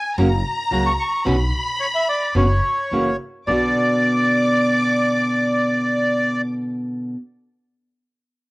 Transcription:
0.00 0.14 G#5 loud
0.00 0.16 G#5 medium
0.17 0.41 F#1 loud
0.17 0.27 C#3 medium
0.17 0.27 F#3 loud
0.17 0.27 A#3 medium
0.17 0.27 C#4 loud
0.17 0.27 F#4 loud
0.17 1.22 A#5 loud
0.71 0.95 C#2 medium
0.71 0.88 C#3 medium
0.71 0.88 F#3 medium
0.71 0.89 A#3 medium
0.71 0.89 C#4 medium
0.71 0.89 F#4 medium
0.71 0.85 A#5 loud
0.86 0.92 C#6 loud
0.99 1.25 C#6 loud
1.25 1.49 B1 loud
1.25 1.34 B2 medium
1.25 1.35 D3 medium
1.25 1.35 B3 loud
1.25 1.35 C#4 loud
1.25 1.35 F#4 loud
1.25 2.91 B5 loud
1.80 1.87 C#5 loud
1.95 2.08 E5 loud
2.09 2.34 D5 loud
2.35 2.59 F#1 loud
2.35 2.44 B2 medium
2.35 2.45 D3 medium
2.35 2.45 B3 medium
2.35 2.45 C#4 medium
2.35 2.45 F#4 medium
2.35 3.17 C#5 medium
2.91 3.15 F#1 medium
2.91 3.09 C#3 medium
2.91 3.10 E3 medium
2.91 3.10 A#3 medium
2.91 3.10 C#4 medium
2.91 3.10 F#4 medium
3.47 3.71 B1 medium
3.47 7.15 B2 loud
3.47 7.16 D3 medium
3.47 7.16 B3 medium
3.47 7.17 F#4 medium
3.47 6.41 D5 loud
3.47 6.41 D6 medium

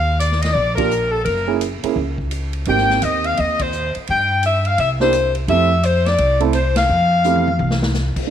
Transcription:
0.00 0.51 D#2 medium
0.00 0.18 F5 loud
0.19 0.40 D5 medium
0.19 hi-hat pedal medium
0.19 ride medium
0.32 snare soft
0.41 0.55 D#5 medium
0.41 snare soft
0.41 ride medium
0.53 1.22 A#1 medium
0.53 0.76 D5 medium
0.76 0.89 A#3 medium
0.76 0.89 D4 soft
0.76 0.89 F4 soft
0.76 0.90 G4 medium
0.76 1.09 A#4 medium
0.76 kick medium
0.76 ride medium
0.91 hi-hat pedal medium
1.11 1.25 A4 medium
1.25 1.79 F#1 medium
1.25 1.58 A#4 medium
1.25 ride medium
1.47 1.59 A#3 medium
1.47 1.60 C#4 soft
1.47 1.60 E4 medium
1.47 1.60 G#4 medium
1.61 hi-hat pedal soft
1.61 ride medium
1.83 1.95 A#3 medium
1.83 1.95 C#4 medium
1.83 1.95 E4 soft
1.83 1.95 G#4 medium
1.83 muted upright bass stroke soft
1.83 ride medium
1.96 2.63 C#2 medium
2.18 kick medium
2.31 hi-hat pedal soft
2.31 ride medium
2.53 ride soft
2.65 2.99 G#1 medium
2.65 3.65 A#3 medium
2.65 3.65 C4 soft
2.65 3.65 D#4 soft
2.65 3.65 G4 medium
2.65 3.00 G5 loud
2.65 ride medium
2.77 snare soft
2.90 snare soft
3.02 3.35 D#2 medium
3.02 3.25 D#5 medium
3.02 hi-hat pedal soft
3.02 ride medium
3.24 3.38 F5 medium
3.24 ride soft
3.37 3.91 D#2 medium
3.37 3.60 D#5 medium
3.37 ride medium
3.59 3.96 C5 medium
3.59 kick medium
3.59 ride medium
3.72 hi-hat pedal soft
3.95 muted upright bass stroke soft
3.95 ride soft
4.07 4.75 G2 medium
4.07 4.42 G5 medium
4.07 ride medium
4.43 4.65 E5 medium
4.43 hi-hat pedal soft
4.43 ride medium
4.65 4.79 F5 medium
4.65 ride soft
4.78 5.45 C2 medium
4.78 4.90 E5 medium
4.78 ride medium
5.00 5.12 A#3 medium
5.00 5.12 D4 medium
5.00 5.12 E4 medium
5.00 5.12 G4 medium
5.00 5.33 C5 medium
5.00 snare soft
5.13 hi-hat pedal medium
5.13 ride medium
5.35 ride soft
5.48 6.15 F2 medium
5.48 5.68 A3 soft
5.48 5.68 C4 soft
5.48 5.69 E4 soft
5.48 5.69 G4 medium
5.48 5.81 E5 medium
5.48 ride medium
5.83 6.06 C5 medium
5.83 hi-hat pedal medium
5.83 ride medium
6.06 6.41 D5 medium
6.06 snare soft
6.06 ride soft
6.18 6.85 C2 medium
6.18 ride medium
6.40 6.52 A3 medium
6.40 6.52 C4 medium
6.40 6.52 E4 medium
6.40 6.52 A4 medium
6.40 ride soft
6.53 6.75 C5 medium
6.53 hi-hat pedal soft
6.53 ride medium
6.76 7.91 F5 medium
6.76 snare medium
6.76 ride medium
6.89 7.56 F2 medium
7.24 7.44 A3 medium
7.24 7.44 C4 soft
7.24 7.45 E4 soft
7.24 7.44 G4 medium
7.24 hi-hat pedal medium
7.36 high tom soft
7.47 high tom medium
7.59 8.13 C2 medium
7.59 high tom medium
7.71 snare medium
7.83 snare medium
7.94 snare medium
7.94 hi-hat pedal medium
8.16 muted upright bass stroke soft
8.16 kick medium
8.16 crash medium

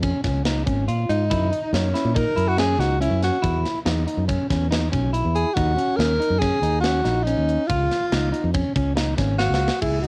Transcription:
0.00 0.11 F2 medium
0.00 0.20 C#4 medium
0.00 kick medium
0.00 closed hi-hat medium
0.24 0.63 C#2 medium
0.24 0.42 C#4 medium
0.24 kick medium
0.24 snare soft
0.24 closed hi-hat medium
0.45 0.64 D#4 medium
0.45 snare loud
0.45 closed hi-hat medium
0.66 0.86 G#1 medium
0.66 0.84 C#4 medium
0.66 kick medium
0.66 closed hi-hat medium
0.88 1.07 A#2 medium
0.88 1.24 F4 medium
0.88 closed hi-hat medium
1.09 1.28 G#2 medium
1.09 1.69 D#4 medium
1.09 closed hi-hat medium
1.30 1.50 F#2 medium
1.30 1.48 E4 medium
1.30 kick loud
1.30 closed hi-hat medium
1.52 1.87 D#4 medium
1.52 closed hi-hat medium
1.73 1.92 F#2 medium
1.73 2.18 C#4 medium
1.73 snare medium
1.73 closed hi-hat medium
1.94 2.12 E4 medium
1.94 snare soft
1.94 closed hi-hat medium
2.05 2.24 A#2 medium
2.14 2.33 D#4 medium
2.14 2.50 A#4 loud
2.14 kick loud
2.14 closed hi-hat medium
2.36 2.75 F#2 medium
2.36 2.54 E4 medium
2.36 closed hi-hat medium
2.48 2.58 F#4 medium
2.57 2.75 C#4 medium
2.57 2.81 G#4 loud
2.57 snare loud
2.57 closed hi-hat medium
2.78 3.08 C#2 medium
2.78 2.97 D#4 medium
2.78 3.00 F#4 medium
2.78 snare soft
2.78 closed hi-hat medium
3.01 3.36 C#4 medium
3.01 3.21 E4 medium
3.01 closed hi-hat medium
3.10 3.30 F#2 medium
3.22 3.62 F#4 medium
3.22 snare soft
3.22 closed hi-hat medium
3.42 3.63 E2 medium
3.42 3.78 E4 medium
3.42 kick loud
3.42 closed hi-hat medium
3.65 snare soft
3.65 closed hi-hat soft
3.85 4.05 E2 medium
3.85 4.03 D#4 medium
3.85 snare loud
3.85 closed hi-hat medium
4.07 4.25 D#4 medium
4.07 closed hi-hat medium
4.17 4.37 F#2 medium
4.28 4.46 C#4 medium
4.28 kick loud
4.28 closed hi-hat medium
4.50 4.88 E2 medium
4.50 4.68 C#4 medium
4.50 kick medium
4.50 snare soft
4.50 closed hi-hat medium
4.71 4.89 D#4 medium
4.71 snare loud
4.71 closed hi-hat medium
4.92 5.21 B1 medium
4.92 5.10 C#4 medium
4.92 kick medium
4.92 closed hi-hat medium
5.13 5.49 E4 medium
5.13 closed hi-hat medium
5.25 5.44 E2 medium
5.35 5.56 G#4 medium
5.35 closed hi-hat medium
5.54 5.76 D#2 loud
5.54 5.74 D#4 medium
5.54 5.98 F#4 loud
5.54 kick loud
5.54 closed hi-hat medium
5.77 6.13 C#4 medium
5.77 closed hi-hat medium
5.96 6.18 D#2 medium
5.96 6.41 A#4 medium
5.96 snare medium
5.96 closed hi-hat medium
6.20 6.38 D#4 medium
6.20 closed hi-hat medium
6.30 6.49 F#2 medium
6.39 6.59 C#4 medium
6.39 6.80 G#4 loud
6.39 kick loud
6.39 snare soft
6.39 closed hi-hat medium
6.62 7.01 D#2 medium
6.62 6.81 D#4 medium
6.62 closed hi-hat medium
6.81 7.02 C#4 medium
6.81 7.25 F#4 medium
6.81 snare loud
6.81 closed hi-hat medium
7.05 7.34 A#1 medium
7.05 7.23 D#4 medium
7.05 snare soft
7.05 closed hi-hat medium
7.23 7.62 C#4 medium
7.23 7.68 D#4 medium
7.27 closed hi-hat medium
7.37 7.56 D#2 medium
7.49 closed hi-hat soft
7.67 7.88 C#2 medium
7.67 8.53 F4 medium
7.67 8.05 F4 medium
7.67 kick loud
7.67 closed hi-hat medium
7.91 snare soft
7.91 closed hi-hat medium
8.12 8.31 C#2 medium
8.12 8.30 D#4 medium
8.12 snare medium
8.12 closed hi-hat medium
8.32 8.50 D#4 medium
8.32 closed hi-hat medium
8.44 8.63 F2 medium
8.54 8.72 C#4 medium
8.54 kick loud
8.54 closed hi-hat medium
8.75 9.14 C#2 medium
8.75 8.93 C#4 medium
8.75 kick medium
8.75 closed hi-hat medium
8.96 9.14 D#4 medium
8.96 snare loud
8.96 closed hi-hat medium
9.18 9.47 G#1 medium
9.18 9.36 C#4 medium
9.18 kick medium
9.18 snare soft
9.18 closed hi-hat medium
9.39 9.78 F#4 medium
9.39 9.75 F5 medium
9.39 snare medium
9.50 9.69 C#2 medium
9.50 snare medium
9.68 snare medium
9.82 10.07 C#2 medium
9.82 10.05 E4 medium
9.82 9.99 G#4 medium
9.82 kick loud
9.82 crash medium
10.02 10.07 D#4 medium
10.02 10.07 F#4 medium
10.02 closed hi-hat soft

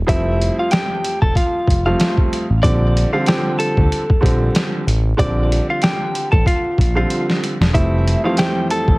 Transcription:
0.07 0.49 F1 loud
0.07 1.69 F2 medium
0.07 1.70 F3 medium
0.07 1.70 G3 medium
0.07 1.70 A3 medium
0.07 1.70 C4 loud
0.07 0.56 E4 medium
0.07 0.56 E5 loud
0.07 kick loud
0.07 closed hi-hat medium
0.41 closed hi-hat medium
0.59 0.72 F4 medium
0.59 0.71 F5 medium
0.71 1.19 G4 medium
0.71 1.19 G5 loud
0.71 snare loud
0.71 closed hi-hat medium
1.04 closed hi-hat medium
1.22 1.33 E1 medium
1.22 1.35 A4 medium
1.22 1.34 A5 medium
1.22 kick medium
1.35 1.83 F4 medium
1.35 1.83 F5 medium
1.35 kick medium
1.35 closed hi-hat medium
1.68 1.94 F1 loud
1.68 kick medium
1.68 closed hi-hat medium
1.86 2.44 F2 medium
1.86 2.44 F3 medium
1.86 2.44 G3 medium
1.86 2.44 A3 medium
1.86 2.45 C4 loud
1.86 2.15 F4 medium
1.86 2.15 F5 medium
2.00 snare loud
2.00 snare medium
2.00 closed hi-hat medium
2.18 kick medium
2.33 closed hi-hat medium
2.50 2.61 A1 medium
2.63 3.05 A#1 loud
2.63 3.09 D3 loud
2.63 3.09 F3 medium
2.63 3.10 G3 medium
2.63 3.10 C4 loud
2.63 3.10 D5 loud
2.63 3.11 D6 medium
2.63 kick loud
2.63 closed hi-hat medium
2.97 closed hi-hat medium
3.13 3.26 D3 medium
3.13 3.27 F3 medium
3.13 3.27 G3 medium
3.13 3.28 C4 loud
3.13 3.26 F4 medium
3.13 3.26 F5 medium
3.26 4.02 D3 loud
3.26 4.03 F3 medium
3.26 4.03 G3 medium
3.26 4.03 C4 loud
3.26 3.57 G4 medium
3.26 3.56 G5 medium
3.26 snare loud
3.26 closed hi-hat medium
3.59 4.69 A4 medium
3.59 4.69 A5 medium
3.59 closed hi-hat medium
3.77 3.89 D2 medium
3.77 kick loud
3.92 closed hi-hat medium
4.10 kick loud
4.21 4.49 A#1 loud
4.21 4.81 D3 medium
4.21 4.82 F3 medium
4.21 4.82 G3 medium
4.21 4.82 C4 loud
4.21 kick medium
4.26 closed hi-hat medium
4.55 snare loud
4.55 snare medium
4.55 closed hi-hat medium
4.87 5.13 A1 medium
4.87 closed hi-hat medium
5.17 5.60 A#1 loud
5.17 6.80 D3 medium
5.17 6.80 F3 medium
5.17 6.80 G3 medium
5.17 6.80 C4 loud
5.17 5.66 D5 loud
5.17 5.67 D6 medium
5.17 kick loud
5.17 closed hi-hat medium
5.52 closed hi-hat medium
5.70 5.82 F4 medium
5.70 5.82 F5 medium
5.82 6.30 G4 medium
5.82 6.30 G5 loud
5.82 snare loud
5.82 closed hi-hat medium
6.15 closed hi-hat medium
6.32 6.44 A1 loud
6.32 6.45 A4 medium
6.32 6.45 A5 medium
6.32 kick loud
6.46 6.94 F4 medium
6.46 6.94 F5 medium
6.46 kick medium
6.46 closed hi-hat medium
6.78 7.05 A#1 loud
6.78 kick medium
6.78 closed hi-hat medium
6.95 7.54 D3 medium
6.95 7.54 F3 medium
6.95 7.54 G3 medium
6.95 7.55 C4 loud
6.95 7.26 F4 medium
6.95 7.25 F5 medium
7.10 closed hi-hat medium
7.30 snare medium
7.44 closed hi-hat medium
7.61 7.72 E1 medium
7.61 snare loud
7.73 8.15 F1 loud
7.73 8.19 F2 medium
7.73 8.20 E3 medium
7.73 8.20 G3 medium
7.73 8.20 A3 medium
7.73 8.20 C4 loud
7.73 8.22 E4 medium
7.73 8.21 E5 loud
7.73 kick loud
7.73 closed hi-hat medium
8.08 closed hi-hat medium
8.24 8.36 F2 loud
8.24 8.37 E3 medium
8.24 8.37 G3 medium
8.24 8.37 A3 medium
8.24 8.38 C4 loud
8.24 8.38 F4 medium
8.24 8.37 F5 medium
8.37 8.98 F2 medium
8.37 8.98 E3 medium
8.37 8.98 G3 medium
8.37 8.98 A3 medium
8.37 8.98 C4 loud
8.37 8.67 G4 medium
8.37 8.67 G5 medium
8.37 snare loud
8.37 closed hi-hat medium
8.71 8.98 A4 medium
8.71 8.98 A5 medium
8.71 closed hi-hat medium
8.88 8.98 A1 medium
8.88 kick loud

